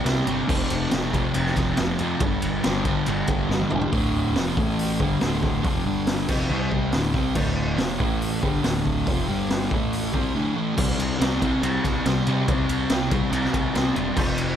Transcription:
0.05 picked electric bass C2, distorted electric guitar C3 G3 C4, snare, ride
0.27 picked electric bass G1, distorted electric guitar C3 G3 C4, ride
0.48 picked electric bass F1, distorted electric guitar F2 C3 F3, kick, crash
0.70 picked electric bass F1, ride
0.91 picked electric bass F1, distorted electric guitar F2 C3 F3, snare, ride
1.13 distorted electric guitar F2 C3 F3, kick, ride
1.34 picked electric bass F1, distorted electric guitar F2 C3 F3, ride
1.46 snare
1.56 picked electric bass F1, kick, snare, ride
1.77 picked electric bass F1, distorted electric guitar F2 C3 F3, snare, ride
1.99 distorted electric guitar F2 C3 F3, picked electric bass F2, ride
2.20 picked electric bass G1, distorted electric guitar G2 D3 G3, kick, ride
2.42 picked electric bass G1, ride
2.63 picked electric bass G1, distorted electric guitar G2 D3 G3, snare, ride
2.85 distorted electric guitar G2 D3 G3, kick, ride
3.06 picked electric bass G1, distorted electric guitar G2 D3 G3, ride
3.27 picked electric bass G1, kick, ride
3.49 picked electric bass G1, distorted electric guitar G2 D3 G3, snare
3.60 high tom
3.70 picked electric bass E1, distorted electric guitar G2 D3 G3, mid tom
3.81 floor tom
3.92 picked electric bass D1, distorted electric guitar D2 A2 D3, kick, open hi-hat
4.35 picked electric bass F1, distorted electric guitar F2 C3 F3, snare, open hi-hat
4.57 picked electric bass A1, distorted electric guitar A2 E3 A3, kick
4.79 open hi-hat
4.99 picked electric bass G1, distorted electric guitar G2 D3 G3, kick
5.20 picked electric bass D1, distorted electric guitar D2 A2 D3, snare, open hi-hat
5.42 kick, snare
5.64 picked electric bass F1, distorted electric guitar F2 C3 F3, kick, open hi-hat
5.86 picked electric bass G1, distorted electric guitar G2 D3 G3
6.07 snare, open hi-hat
6.18 snare
6.28 picked electric bass F1, distorted electric guitar F2 C3 F3, kick, crash
6.50 picked electric bass C2, distorted electric guitar C3 G3 C4
6.72 kick
6.92 picked electric bass D1, distorted electric guitar D2 A2 D3, snare, open hi-hat
7.13 picked electric bass C2, distorted electric guitar C3 G3 C4, kick, snare
7.35 picked electric bass D1, distorted electric guitar D2 A2 D3, kick, crash
7.78 picked electric bass F1, distorted electric guitar F2 C3 F3, snare, open hi-hat
7.99 picked electric bass A1, distorted electric guitar A2 E3 A3, kick
8.22 open hi-hat
8.42 picked electric bass G1, distorted electric guitar G2 D3 G3, kick
8.64 picked electric bass D1, distorted electric guitar D2 A2 D3, snare, open hi-hat
8.86 kick
9.07 picked electric bass F1, distorted electric guitar F2 C3 F3, kick, open hi-hat
9.28 picked electric bass G1, distorted electric guitar G2 D3 G3
9.50 snare, open hi-hat
9.61 snare
9.71 picked electric bass A1, distorted electric guitar A2 E3 A3, kick
9.93 open hi-hat
10.13 picked electric bass C2, distorted electric guitar C3 G3 C4, kick
10.35 distorted electric guitar D2 A2 D3
10.55 distorted electric guitar A2 E3 A3
10.76 picked electric bass C2, distorted electric guitar C3 G3 C4, kick, crash
10.98 picked electric bass C2, ride
11.19 picked electric bass C2, distorted electric guitar C3 G3 C4, snare, ride
11.41 distorted electric guitar C3 G3 C4, kick, ride
11.62 picked electric bass C2, distorted electric guitar C3 G3 C4, ride
11.84 picked electric bass C2, kick, snare, ride
12.05 picked electric bass C2, distorted electric guitar C3 G3 C4, snare, ride
12.27 distorted electric guitar C3 G3 C4, picked electric bass C3, ride
12.48 picked electric bass C2, distorted electric guitar C3 G3 C4, kick, ride
12.69 picked electric bass C2, ride
12.90 picked electric bass C2, distorted electric guitar C3 G3 C4, snare, ride
13.11 distorted electric guitar C3 G3 C4, kick, ride
13.31 picked electric bass C2, distorted electric guitar C3 G3 C4, ride
13.44 snare
13.54 picked electric bass C2, kick, ride
13.74 picked electric bass C2, distorted electric guitar C3 G3 C4, snare, ride
13.95 picked electric bass E1, distorted electric guitar C3 G3 C4, ride
14.16 picked electric bass F1, distorted electric guitar F2 C3 F3, kick, crash
14.38 picked electric bass F1, ride

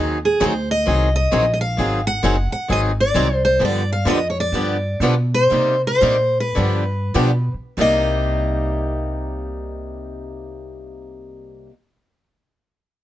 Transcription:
Already playing: upright bass D#2, steel-string acoustic guitar D#3 F#3 C4 D#4 G#4
0.25 steel-string acoustic guitar G#4
0.40 upright bass D2, steel-string acoustic guitar D#3 F#3 C4 D#4 G#4 C5
0.71 steel-string acoustic guitar D#5
0.86 upright bass C2, steel-string acoustic guitar D#3 F#3 C4 D#4 G#4
1.16 steel-string acoustic guitar D#5
1.31 upright bass A#1, steel-string acoustic guitar D#3 F#3 C4 D#4 G#4
1.54 steel-string acoustic guitar D#5
1.61 steel-string acoustic guitar F5
1.77 upright bass G#1, steel-string acoustic guitar D#3 F#3 C4 D#4 G#4
2.07 steel-string acoustic guitar F#5
2.23 upright bass F#1, steel-string acoustic guitar D#3 F#3 C4 D#4 G#4
2.52 steel-string acoustic guitar F#5, muted upright bass stroke
2.68 upright bass G#1, steel-string acoustic guitar D#3 F#3 C4 D#4 G#4
2.72 steel-string acoustic guitar D#5
3.00 steel-string acoustic guitar D5
3.14 upright bass C2, steel-string acoustic guitar D#3 F#3 C4 D#4 G#4
3.45 steel-string acoustic guitar C5
3.59 upright bass G2, steel-string acoustic guitar D3 F3 B3 D4 G4
3.65 steel-string acoustic guitar D5
3.92 steel-string acoustic guitar F5
4.05 upright bass F2, steel-string acoustic guitar D3 F3 B3 D4 G4
4.10 steel-string acoustic guitar D#5
4.30 steel-string acoustic guitar C#5
4.40 steel-string acoustic guitar D5
4.52 upright bass G2, steel-string acoustic guitar D3 F3 B3 D4 G4
5.00 upright bass B2, steel-string acoustic guitar D3 F3 B3 D4 G4
5.34 steel-string acoustic guitar C5
5.51 upright bass C3, steel-string acoustic guitar C3 G3 A#3 D#4 G4
5.87 steel-string acoustic guitar C5
6.02 upright bass A#2, steel-string acoustic guitar C3 G3 A#3 D#4 G4
6.40 steel-string acoustic guitar B4
6.55 upright bass G2, steel-string acoustic guitar D3 F3 B3 D4 G4
7.14 upright bass B2, steel-string acoustic guitar D3 F3 B3 D4 G4
7.54 muted upright bass stroke
7.77 upright bass C2, steel-string acoustic guitar C3 G3 A#3 D#4 G4 D#5

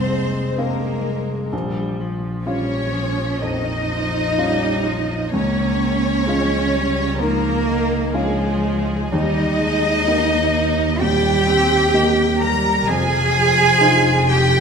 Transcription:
Already playing: double bass F1, felt piano C2 C4 G#4 F5, cello C4, violin section C5
0.09 viola G#3
0.57 cello A#3, felt piano C4 G#4 F5, violin section A#4
1.52 felt piano A#1, double bass A#1, viola G3
2.00 viola F3
2.46 viola G3, cello C#4, felt piano C#4 F4 F5, violin section C#5
2.93 viola F3
3.41 felt piano F2, viola D#3, cello D#4, violin section D#5
3.90 viola F3
4.38 viola G3, felt piano C#4 F4 F5
4.85 viola F3
5.32 double bass C#2, felt piano C#2, viola A#3, cello C#4, violin section C#5
6.26 viola G#3, felt piano C#4 F4 F5
6.73 viola G3
7.19 felt piano G#2, viola F3, cello A#3, violin section A#4
7.66 viola D#3
8.13 viola F3, cello G#3, felt piano C#4 F4 F5, violin section G#4
9.11 double bass D#2, felt piano D#2, viola G3, cello D#4, violin section D#5
9.60 viola G#3
10.07 viola A#3, felt piano A#3 G4 D#5
11.00 felt piano A#2, viola G3, cello G4, violin section G5
11.47 viola C4
11.94 viola A#3, felt piano A#3 G4 D#5
12.41 viola G3, cello A#4, violin section A#5
12.87 double bass F1, felt piano F2, viola F3, cello G#4, violin section G#5
13.81 felt piano D#4 F4 C5
14.30 cello G4, violin section G5

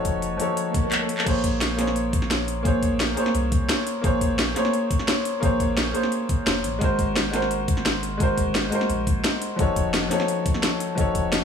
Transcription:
Already playing: sub bass F1, grand piano F3 D#4 F#4 A4 C#5
0.05 kick, closed hi-hat
0.14 sub bass F1
0.22 closed hi-hat
0.37 grand piano F3 D#4 F#4, closed hi-hat
0.41 grand piano A4 C#5
0.57 closed hi-hat, swell
0.74 kick, closed hi-hat
0.92 clap, closed hi-hat
1.09 closed hi-hat
1.18 clap
1.24 sub bass A#1, grand piano A#3 G#4 C5, kick, closed hi-hat, crash
1.29 grand piano C#5
1.44 kick, closed hi-hat
1.61 snare, closed hi-hat
1.76 grand piano A#3 G#4 C5, snare, closed hi-hat
1.81 grand piano C#5
1.87 snare
1.96 closed hi-hat
2.13 kick, closed hi-hat
2.22 snare
2.31 snare, closed hi-hat
2.48 closed hi-hat
2.63 sub bass A#1, grand piano A#3 G#4 C5, kick, closed hi-hat
2.68 grand piano C#5
2.83 kick, closed hi-hat
2.91 sub bass A#1
3.00 snare, closed hi-hat
3.14 grand piano A#3 G#4 C5, closed hi-hat
3.20 grand piano C#5
3.26 snare
3.35 sub bass C2, closed hi-hat
3.52 kick, closed hi-hat
3.69 snare, closed hi-hat
3.87 closed hi-hat
4.01 sub bass A#1, grand piano A#3 G#4 C5, kick, closed hi-hat
4.07 grand piano C#5
4.21 kick, closed hi-hat
4.30 sub bass A#1
4.39 snare, closed hi-hat
4.54 grand piano A#3 G#4 C5, snare, closed hi-hat
4.59 grand piano C#5
4.65 snare
4.73 closed hi-hat
4.91 kick, closed hi-hat
4.99 snare
5.08 snare, closed hi-hat
5.25 closed hi-hat
5.40 sub bass A#1, grand piano A#3 G#4 C5, kick, closed hi-hat
5.45 grand piano C#5
5.60 kick, closed hi-hat
5.69 sub bass A#1
5.77 snare, closed hi-hat
5.92 grand piano A#3 G#4 C5, closed hi-hat
5.97 grand piano C#5
6.03 snare
6.12 closed hi-hat
6.29 kick, closed hi-hat
6.47 sub bass F1, snare, closed hi-hat
6.64 sub bass A#1, closed hi-hat
6.79 sub bass G#1, grand piano G#3 F#4 A#4, kick, closed hi-hat
6.84 grand piano C5
6.99 kick, closed hi-hat
7.16 snare, closed hi-hat
7.31 grand piano G#3 F#4 A#4, snare, closed hi-hat
7.36 grand piano C5
7.42 snare
7.51 closed hi-hat
7.68 kick, closed hi-hat
7.77 snare
7.86 snare, closed hi-hat
8.03 closed hi-hat
8.17 sub bass G#1, grand piano G#3 F#4 A#4, kick, closed hi-hat
8.23 grand piano C5
8.38 kick, closed hi-hat
8.46 sub bass G#1
8.55 snare, closed hi-hat
8.69 grand piano G#3 F#4 A#4, closed hi-hat
8.75 grand piano C5
8.81 snare
8.90 sub bass A#1, closed hi-hat
9.07 kick, closed hi-hat
9.24 snare, closed hi-hat
9.42 closed hi-hat
9.56 sub bass F1, grand piano F3 D#4 F#4, kick, closed hi-hat
9.60 grand piano A4 C#5
9.76 kick, closed hi-hat
9.85 sub bass F1
9.94 snare, closed hi-hat
10.08 grand piano F3 D#4 F#4 A4, snare, closed hi-hat
10.14 grand piano C#5
10.20 snare
10.28 closed hi-hat
10.46 kick, closed hi-hat
10.54 snare
10.63 snare, closed hi-hat
10.80 closed hi-hat
10.95 sub bass F1, grand piano F3 D#4 F#4 A4, kick, closed hi-hat
11.00 grand piano C#5
11.15 kick, closed hi-hat
11.24 sub bass F1
11.32 snare, closed hi-hat

